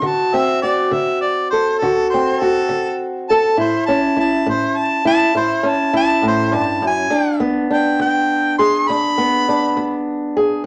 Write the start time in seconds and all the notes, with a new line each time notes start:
0.02 D3 F#4
0.06 A5
0.34 C4 E5
0.62 F#4 D5
0.91 D3 E5
1.21 D5
1.51 A4 C5
1.78 D3 A4
1.83 F#4
2.10 C5
2.14 C4
2.40 F#4 A4
2.69 D3
3.29 A4 A5
3.57 A2 E4 C5
3.86 C#4 A5
4.17 E4 A5
4.46 A2 C5
4.77 A5
5.05 E4 A5
5.35 A2 E4 C5
5.63 C#4
5.69 A5
5.93 E4 A5
6.22 A2
6.28 C5
6.52 G2 A5
6.82 F#2
6.87 G#5
7.10 E2 D4
7.40 B3
7.70 D4 G5
8.00 E2 G5
8.58 G#4 C6
8.88 E2 D4 B5
9.18 B3
9.49 D4
9.77 E2
10.37 G#4